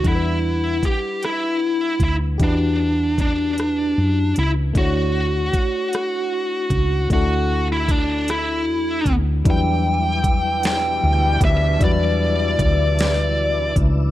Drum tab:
HH |x-xx-x|x-xx-x|x-xx-x|x-xx-x|
SD |---r--|---r--|---r--|---r--|
BD |o-o--o|o-o---|o-o--o|o-o--o|

HH |x-xx-x|x-xx-x|
SD |---o--|---o--|
BD |o-o--o|o-o--o|